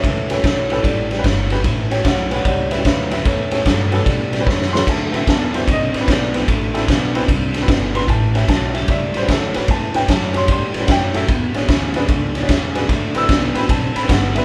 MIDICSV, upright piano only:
0, 0, Header, 1, 2, 480
1, 0, Start_track
1, 0, Tempo, 401606
1, 44, Time_signature, 4, 2, 24, 8
1, 17269, End_track
2, 0, Start_track
2, 0, Title_t, "Upright piano"
2, 0, Program_c, 0, 0
2, 81, Note_on_c, 0, 69, 75
2, 81, Note_on_c, 0, 73, 78
2, 354, Note_off_c, 0, 69, 0
2, 364, Note_on_c, 0, 67, 65
2, 366, Note_off_c, 0, 73, 0
2, 366, Note_on_c, 0, 61, 73
2, 368, Note_on_c, 0, 66, 67
2, 370, Note_on_c, 0, 71, 75
2, 399, Note_on_c, 0, 69, 74
2, 405, Note_on_c, 0, 73, 78
2, 445, Note_off_c, 0, 67, 0
2, 446, Note_off_c, 0, 61, 0
2, 447, Note_off_c, 0, 66, 0
2, 448, Note_off_c, 0, 71, 0
2, 533, Note_off_c, 0, 69, 0
2, 540, Note_off_c, 0, 73, 0
2, 551, Note_on_c, 0, 69, 64
2, 558, Note_on_c, 0, 73, 75
2, 830, Note_off_c, 0, 69, 0
2, 846, Note_off_c, 0, 73, 0
2, 852, Note_on_c, 0, 67, 66
2, 854, Note_on_c, 0, 66, 67
2, 855, Note_on_c, 0, 71, 83
2, 858, Note_on_c, 0, 61, 72
2, 863, Note_on_c, 0, 64, 77
2, 870, Note_on_c, 0, 69, 96
2, 930, Note_off_c, 0, 67, 0
2, 931, Note_off_c, 0, 66, 0
2, 932, Note_off_c, 0, 71, 0
2, 933, Note_off_c, 0, 61, 0
2, 1300, Note_off_c, 0, 64, 0
2, 1322, Note_off_c, 0, 69, 0
2, 1327, Note_on_c, 0, 71, 51
2, 1335, Note_on_c, 0, 67, 44
2, 1366, Note_off_c, 0, 71, 0
2, 1370, Note_off_c, 0, 67, 0
2, 1420, Note_on_c, 0, 61, 81
2, 1420, Note_on_c, 0, 67, 70
2, 1422, Note_on_c, 0, 66, 70
2, 1423, Note_on_c, 0, 71, 93
2, 1497, Note_off_c, 0, 61, 0
2, 1497, Note_off_c, 0, 67, 0
2, 1498, Note_off_c, 0, 66, 0
2, 1499, Note_off_c, 0, 71, 0
2, 1810, Note_on_c, 0, 66, 72
2, 1812, Note_on_c, 0, 61, 81
2, 1818, Note_on_c, 0, 67, 74
2, 1821, Note_on_c, 0, 71, 92
2, 1891, Note_off_c, 0, 66, 0
2, 1892, Note_off_c, 0, 61, 0
2, 1895, Note_off_c, 0, 67, 0
2, 1896, Note_off_c, 0, 71, 0
2, 2283, Note_on_c, 0, 66, 84
2, 2284, Note_on_c, 0, 61, 83
2, 2285, Note_on_c, 0, 67, 81
2, 2291, Note_on_c, 0, 73, 95
2, 2368, Note_off_c, 0, 66, 0
2, 2369, Note_off_c, 0, 61, 0
2, 2369, Note_off_c, 0, 67, 0
2, 2372, Note_off_c, 0, 73, 0
2, 2439, Note_on_c, 0, 77, 64
2, 2472, Note_off_c, 0, 77, 0
2, 2486, Note_on_c, 0, 78, 94
2, 2488, Note_on_c, 0, 73, 84
2, 2758, Note_on_c, 0, 67, 65
2, 2761, Note_on_c, 0, 61, 72
2, 2762, Note_off_c, 0, 73, 0
2, 2769, Note_on_c, 0, 71, 85
2, 2770, Note_on_c, 0, 66, 69
2, 2773, Note_off_c, 0, 78, 0
2, 2802, Note_on_c, 0, 73, 74
2, 2814, Note_on_c, 0, 78, 87
2, 2846, Note_off_c, 0, 67, 0
2, 2848, Note_off_c, 0, 61, 0
2, 2852, Note_off_c, 0, 71, 0
2, 2853, Note_off_c, 0, 66, 0
2, 2940, Note_off_c, 0, 73, 0
2, 2944, Note_off_c, 0, 78, 0
2, 2958, Note_on_c, 0, 73, 72
2, 2962, Note_on_c, 0, 78, 88
2, 3237, Note_off_c, 0, 73, 0
2, 3244, Note_on_c, 0, 71, 80
2, 3247, Note_on_c, 0, 76, 89
2, 3252, Note_off_c, 0, 78, 0
2, 3253, Note_on_c, 0, 67, 45
2, 3293, Note_off_c, 0, 67, 0
2, 3322, Note_on_c, 0, 66, 63
2, 3324, Note_on_c, 0, 61, 71
2, 3326, Note_on_c, 0, 67, 63
2, 3326, Note_on_c, 0, 73, 75
2, 3403, Note_off_c, 0, 71, 0
2, 3411, Note_off_c, 0, 76, 0
2, 3412, Note_off_c, 0, 66, 0
2, 3413, Note_off_c, 0, 61, 0
2, 3413, Note_off_c, 0, 73, 0
2, 3414, Note_off_c, 0, 67, 0
2, 3421, Note_on_c, 0, 71, 73
2, 3429, Note_on_c, 0, 76, 82
2, 3709, Note_off_c, 0, 71, 0
2, 3719, Note_on_c, 0, 66, 64
2, 3719, Note_on_c, 0, 67, 65
2, 3720, Note_off_c, 0, 76, 0
2, 3720, Note_on_c, 0, 61, 67
2, 3729, Note_on_c, 0, 71, 77
2, 3738, Note_on_c, 0, 76, 85
2, 3808, Note_off_c, 0, 66, 0
2, 3808, Note_off_c, 0, 67, 0
2, 3809, Note_off_c, 0, 61, 0
2, 3813, Note_off_c, 0, 71, 0
2, 3894, Note_on_c, 0, 69, 75
2, 3898, Note_off_c, 0, 76, 0
2, 3904, Note_on_c, 0, 73, 89
2, 4186, Note_off_c, 0, 69, 0
2, 4204, Note_off_c, 0, 73, 0
2, 4209, Note_on_c, 0, 61, 74
2, 4209, Note_on_c, 0, 67, 66
2, 4210, Note_on_c, 0, 69, 79
2, 4212, Note_on_c, 0, 66, 65
2, 4242, Note_on_c, 0, 73, 85
2, 4294, Note_off_c, 0, 61, 0
2, 4294, Note_off_c, 0, 67, 0
2, 4294, Note_off_c, 0, 69, 0
2, 4296, Note_off_c, 0, 66, 0
2, 4375, Note_off_c, 0, 73, 0
2, 4377, Note_on_c, 0, 69, 70
2, 4392, Note_on_c, 0, 73, 76
2, 4668, Note_off_c, 0, 69, 0
2, 4683, Note_on_c, 0, 67, 68
2, 4688, Note_on_c, 0, 66, 70
2, 4689, Note_off_c, 0, 73, 0
2, 4689, Note_on_c, 0, 71, 82
2, 4690, Note_on_c, 0, 61, 73
2, 4706, Note_on_c, 0, 69, 105
2, 4771, Note_off_c, 0, 67, 0
2, 4774, Note_off_c, 0, 66, 0
2, 4775, Note_off_c, 0, 61, 0
2, 4775, Note_off_c, 0, 71, 0
2, 5163, Note_on_c, 0, 67, 43
2, 5165, Note_off_c, 0, 69, 0
2, 5168, Note_on_c, 0, 71, 49
2, 5210, Note_off_c, 0, 67, 0
2, 5212, Note_off_c, 0, 71, 0
2, 5259, Note_on_c, 0, 67, 72
2, 5260, Note_on_c, 0, 66, 71
2, 5263, Note_on_c, 0, 61, 81
2, 5263, Note_on_c, 0, 71, 86
2, 5343, Note_off_c, 0, 66, 0
2, 5343, Note_off_c, 0, 67, 0
2, 5345, Note_off_c, 0, 61, 0
2, 5345, Note_off_c, 0, 71, 0
2, 5653, Note_on_c, 0, 84, 91
2, 5661, Note_on_c, 0, 67, 64
2, 5664, Note_on_c, 0, 66, 63
2, 5668, Note_on_c, 0, 71, 77
2, 5670, Note_on_c, 0, 61, 66
2, 5742, Note_off_c, 0, 67, 0
2, 5743, Note_off_c, 0, 66, 0
2, 5745, Note_off_c, 0, 71, 0
2, 5746, Note_off_c, 0, 61, 0
2, 5817, Note_off_c, 0, 84, 0
2, 5847, Note_on_c, 0, 81, 83
2, 6131, Note_on_c, 0, 64, 66
2, 6132, Note_on_c, 0, 66, 69
2, 6132, Note_on_c, 0, 71, 76
2, 6135, Note_on_c, 0, 60, 73
2, 6137, Note_off_c, 0, 81, 0
2, 6166, Note_on_c, 0, 76, 88
2, 6217, Note_off_c, 0, 64, 0
2, 6217, Note_off_c, 0, 66, 0
2, 6217, Note_off_c, 0, 71, 0
2, 6219, Note_off_c, 0, 60, 0
2, 6314, Note_off_c, 0, 76, 0
2, 6328, Note_on_c, 0, 81, 88
2, 6618, Note_off_c, 0, 81, 0
2, 6618, Note_on_c, 0, 64, 72
2, 6623, Note_on_c, 0, 66, 70
2, 6626, Note_on_c, 0, 60, 76
2, 6629, Note_on_c, 0, 76, 83
2, 6630, Note_on_c, 0, 72, 80
2, 6701, Note_off_c, 0, 64, 0
2, 6703, Note_off_c, 0, 66, 0
2, 6705, Note_off_c, 0, 60, 0
2, 6707, Note_off_c, 0, 72, 0
2, 6786, Note_off_c, 0, 76, 0
2, 6836, Note_on_c, 0, 75, 97
2, 7101, Note_on_c, 0, 66, 43
2, 7109, Note_on_c, 0, 71, 50
2, 7112, Note_off_c, 0, 75, 0
2, 7133, Note_on_c, 0, 74, 84
2, 7140, Note_off_c, 0, 66, 0
2, 7144, Note_off_c, 0, 71, 0
2, 7180, Note_on_c, 0, 71, 73
2, 7181, Note_on_c, 0, 64, 61
2, 7183, Note_on_c, 0, 66, 61
2, 7184, Note_on_c, 0, 60, 64
2, 7247, Note_on_c, 0, 73, 68
2, 7264, Note_off_c, 0, 71, 0
2, 7265, Note_off_c, 0, 64, 0
2, 7266, Note_off_c, 0, 60, 0
2, 7266, Note_off_c, 0, 66, 0
2, 7279, Note_off_c, 0, 74, 0
2, 7280, Note_off_c, 0, 73, 0
2, 7308, Note_on_c, 0, 74, 92
2, 7582, Note_on_c, 0, 60, 70
2, 7582, Note_on_c, 0, 71, 78
2, 7583, Note_on_c, 0, 64, 63
2, 7583, Note_on_c, 0, 66, 64
2, 7589, Note_off_c, 0, 74, 0
2, 7663, Note_off_c, 0, 60, 0
2, 7663, Note_off_c, 0, 64, 0
2, 7663, Note_off_c, 0, 66, 0
2, 7663, Note_off_c, 0, 71, 0
2, 8056, Note_on_c, 0, 66, 83
2, 8060, Note_on_c, 0, 64, 86
2, 8061, Note_on_c, 0, 60, 83
2, 8062, Note_on_c, 0, 69, 90
2, 8140, Note_off_c, 0, 66, 0
2, 8142, Note_off_c, 0, 64, 0
2, 8143, Note_off_c, 0, 60, 0
2, 8143, Note_off_c, 0, 69, 0
2, 8550, Note_on_c, 0, 60, 90
2, 8552, Note_on_c, 0, 64, 77
2, 8553, Note_on_c, 0, 71, 94
2, 8556, Note_on_c, 0, 66, 79
2, 8627, Note_off_c, 0, 60, 0
2, 8628, Note_off_c, 0, 64, 0
2, 8629, Note_off_c, 0, 71, 0
2, 8630, Note_off_c, 0, 66, 0
2, 9023, Note_on_c, 0, 69, 57
2, 9031, Note_on_c, 0, 66, 53
2, 9062, Note_off_c, 0, 69, 0
2, 9065, Note_off_c, 0, 66, 0
2, 9104, Note_on_c, 0, 60, 82
2, 9109, Note_on_c, 0, 66, 73
2, 9110, Note_on_c, 0, 64, 75
2, 9111, Note_on_c, 0, 71, 86
2, 9186, Note_off_c, 0, 60, 0
2, 9189, Note_off_c, 0, 64, 0
2, 9189, Note_off_c, 0, 66, 0
2, 9190, Note_off_c, 0, 71, 0
2, 9494, Note_on_c, 0, 66, 66
2, 9496, Note_on_c, 0, 64, 67
2, 9501, Note_on_c, 0, 60, 72
2, 9504, Note_on_c, 0, 71, 76
2, 9517, Note_on_c, 0, 84, 90
2, 9579, Note_off_c, 0, 66, 0
2, 9580, Note_off_c, 0, 64, 0
2, 9582, Note_off_c, 0, 60, 0
2, 9584, Note_off_c, 0, 71, 0
2, 9670, Note_off_c, 0, 84, 0
2, 9677, Note_on_c, 0, 81, 94
2, 9972, Note_off_c, 0, 81, 0
2, 9981, Note_on_c, 0, 61, 73
2, 9983, Note_on_c, 0, 67, 68
2, 9984, Note_on_c, 0, 66, 66
2, 9985, Note_on_c, 0, 71, 78
2, 10002, Note_on_c, 0, 76, 84
2, 10062, Note_off_c, 0, 61, 0
2, 10063, Note_off_c, 0, 67, 0
2, 10064, Note_off_c, 0, 66, 0
2, 10064, Note_off_c, 0, 71, 0
2, 10150, Note_on_c, 0, 81, 92
2, 10152, Note_off_c, 0, 76, 0
2, 10439, Note_on_c, 0, 73, 82
2, 10444, Note_on_c, 0, 66, 72
2, 10447, Note_on_c, 0, 67, 65
2, 10448, Note_off_c, 0, 81, 0
2, 10448, Note_on_c, 0, 61, 72
2, 10454, Note_on_c, 0, 76, 86
2, 10531, Note_off_c, 0, 73, 0
2, 10534, Note_off_c, 0, 66, 0
2, 10535, Note_off_c, 0, 67, 0
2, 10536, Note_off_c, 0, 61, 0
2, 10618, Note_off_c, 0, 76, 0
2, 10644, Note_on_c, 0, 76, 102
2, 10935, Note_off_c, 0, 76, 0
2, 10935, Note_on_c, 0, 67, 44
2, 10941, Note_on_c, 0, 71, 50
2, 10959, Note_on_c, 0, 72, 92
2, 10976, Note_off_c, 0, 67, 0
2, 10979, Note_off_c, 0, 71, 0
2, 11019, Note_on_c, 0, 66, 65
2, 11022, Note_on_c, 0, 61, 68
2, 11025, Note_on_c, 0, 67, 58
2, 11030, Note_on_c, 0, 71, 75
2, 11081, Note_on_c, 0, 68, 63
2, 11103, Note_off_c, 0, 66, 0
2, 11104, Note_off_c, 0, 61, 0
2, 11106, Note_off_c, 0, 67, 0
2, 11108, Note_off_c, 0, 71, 0
2, 11110, Note_off_c, 0, 72, 0
2, 11115, Note_off_c, 0, 68, 0
2, 11139, Note_on_c, 0, 69, 95
2, 11413, Note_on_c, 0, 61, 76
2, 11414, Note_on_c, 0, 66, 64
2, 11417, Note_on_c, 0, 67, 63
2, 11419, Note_on_c, 0, 71, 82
2, 11423, Note_off_c, 0, 69, 0
2, 11498, Note_off_c, 0, 61, 0
2, 11498, Note_off_c, 0, 66, 0
2, 11500, Note_off_c, 0, 67, 0
2, 11500, Note_off_c, 0, 71, 0
2, 11603, Note_on_c, 0, 81, 102
2, 11889, Note_on_c, 0, 71, 78
2, 11890, Note_on_c, 0, 61, 76
2, 11891, Note_on_c, 0, 67, 68
2, 11892, Note_on_c, 0, 66, 69
2, 11894, Note_off_c, 0, 81, 0
2, 11896, Note_on_c, 0, 79, 89
2, 11975, Note_off_c, 0, 61, 0
2, 11975, Note_off_c, 0, 71, 0
2, 11976, Note_off_c, 0, 67, 0
2, 11977, Note_off_c, 0, 66, 0
2, 12058, Note_off_c, 0, 79, 0
2, 12070, Note_on_c, 0, 81, 89
2, 12348, Note_on_c, 0, 67, 69
2, 12350, Note_on_c, 0, 66, 68
2, 12354, Note_on_c, 0, 61, 75
2, 12354, Note_on_c, 0, 73, 81
2, 12367, Note_off_c, 0, 81, 0
2, 12398, Note_on_c, 0, 84, 79
2, 12444, Note_off_c, 0, 67, 0
2, 12445, Note_off_c, 0, 66, 0
2, 12447, Note_off_c, 0, 61, 0
2, 12447, Note_off_c, 0, 73, 0
2, 12549, Note_off_c, 0, 84, 0
2, 12572, Note_on_c, 0, 84, 84
2, 12844, Note_on_c, 0, 71, 48
2, 12845, Note_on_c, 0, 67, 45
2, 12889, Note_off_c, 0, 71, 0
2, 12890, Note_off_c, 0, 67, 0
2, 12906, Note_on_c, 0, 61, 67
2, 12908, Note_on_c, 0, 66, 61
2, 12911, Note_on_c, 0, 71, 74
2, 12912, Note_on_c, 0, 67, 64
2, 12991, Note_on_c, 0, 78, 65
2, 13005, Note_off_c, 0, 61, 0
2, 13006, Note_off_c, 0, 66, 0
2, 13007, Note_off_c, 0, 71, 0
2, 13008, Note_off_c, 0, 67, 0
2, 13021, Note_off_c, 0, 84, 0
2, 13026, Note_off_c, 0, 78, 0
2, 13046, Note_on_c, 0, 79, 96
2, 13319, Note_on_c, 0, 67, 69
2, 13322, Note_on_c, 0, 66, 62
2, 13325, Note_on_c, 0, 61, 68
2, 13326, Note_on_c, 0, 69, 80
2, 13334, Note_off_c, 0, 79, 0
2, 13343, Note_on_c, 0, 76, 96
2, 13409, Note_off_c, 0, 67, 0
2, 13410, Note_off_c, 0, 66, 0
2, 13411, Note_off_c, 0, 61, 0
2, 13412, Note_off_c, 0, 69, 0
2, 13804, Note_on_c, 0, 62, 75
2, 13805, Note_on_c, 0, 73, 78
2, 13809, Note_on_c, 0, 68, 66
2, 13811, Note_on_c, 0, 66, 67
2, 13891, Note_off_c, 0, 62, 0
2, 13891, Note_off_c, 0, 73, 0
2, 13893, Note_off_c, 0, 68, 0
2, 13894, Note_off_c, 0, 66, 0
2, 14297, Note_on_c, 0, 66, 84
2, 14297, Note_on_c, 0, 71, 96
2, 14299, Note_on_c, 0, 62, 85
2, 14300, Note_on_c, 0, 68, 85
2, 14376, Note_off_c, 0, 66, 0
2, 14376, Note_off_c, 0, 71, 0
2, 14377, Note_off_c, 0, 62, 0
2, 14378, Note_off_c, 0, 68, 0
2, 14730, Note_off_c, 0, 76, 0
2, 14769, Note_on_c, 0, 68, 52
2, 14772, Note_on_c, 0, 73, 58
2, 14810, Note_off_c, 0, 68, 0
2, 14811, Note_off_c, 0, 73, 0
2, 14849, Note_on_c, 0, 62, 80
2, 14851, Note_on_c, 0, 68, 70
2, 14857, Note_on_c, 0, 66, 76
2, 14858, Note_on_c, 0, 73, 83
2, 14934, Note_off_c, 0, 62, 0
2, 14935, Note_off_c, 0, 68, 0
2, 14938, Note_off_c, 0, 66, 0
2, 14939, Note_off_c, 0, 73, 0
2, 15239, Note_on_c, 0, 68, 84
2, 15244, Note_on_c, 0, 66, 80
2, 15245, Note_on_c, 0, 71, 90
2, 15246, Note_on_c, 0, 62, 86
2, 15326, Note_off_c, 0, 68, 0
2, 15329, Note_off_c, 0, 66, 0
2, 15329, Note_off_c, 0, 71, 0
2, 15330, Note_off_c, 0, 62, 0
2, 15719, Note_on_c, 0, 60, 80
2, 15721, Note_on_c, 0, 66, 71
2, 15722, Note_on_c, 0, 71, 82
2, 15723, Note_on_c, 0, 64, 66
2, 15749, Note_on_c, 0, 88, 103
2, 15806, Note_off_c, 0, 60, 0
2, 15807, Note_off_c, 0, 66, 0
2, 15807, Note_off_c, 0, 71, 0
2, 15808, Note_off_c, 0, 64, 0
2, 16187, Note_on_c, 0, 60, 80
2, 16190, Note_on_c, 0, 66, 69
2, 16192, Note_on_c, 0, 64, 70
2, 16194, Note_on_c, 0, 71, 83
2, 16201, Note_off_c, 0, 88, 0
2, 16209, Note_on_c, 0, 83, 88
2, 16279, Note_off_c, 0, 60, 0
2, 16280, Note_off_c, 0, 66, 0
2, 16282, Note_off_c, 0, 64, 0
2, 16282, Note_off_c, 0, 71, 0
2, 16369, Note_off_c, 0, 83, 0
2, 16377, Note_on_c, 0, 81, 91
2, 16675, Note_off_c, 0, 81, 0
2, 16675, Note_on_c, 0, 72, 50
2, 16679, Note_on_c, 0, 66, 46
2, 16683, Note_on_c, 0, 83, 92
2, 16720, Note_off_c, 0, 72, 0
2, 16722, Note_off_c, 0, 66, 0
2, 16772, Note_on_c, 0, 60, 68
2, 16776, Note_on_c, 0, 64, 63
2, 16779, Note_on_c, 0, 71, 79
2, 16781, Note_on_c, 0, 66, 64
2, 16846, Note_off_c, 0, 83, 0
2, 16853, Note_off_c, 0, 60, 0
2, 16855, Note_off_c, 0, 64, 0
2, 16856, Note_on_c, 0, 78, 89
2, 16857, Note_off_c, 0, 66, 0
2, 16857, Note_off_c, 0, 71, 0
2, 17154, Note_off_c, 0, 78, 0
2, 17156, Note_on_c, 0, 76, 90
2, 17174, Note_on_c, 0, 60, 76
2, 17183, Note_on_c, 0, 66, 65
2, 17183, Note_on_c, 0, 71, 88
2, 17187, Note_on_c, 0, 64, 66
2, 17251, Note_off_c, 0, 60, 0
2, 17255, Note_off_c, 0, 66, 0
2, 17256, Note_off_c, 0, 71, 0
2, 17258, Note_off_c, 0, 64, 0
2, 17269, Note_off_c, 0, 76, 0
2, 17269, End_track
0, 0, End_of_file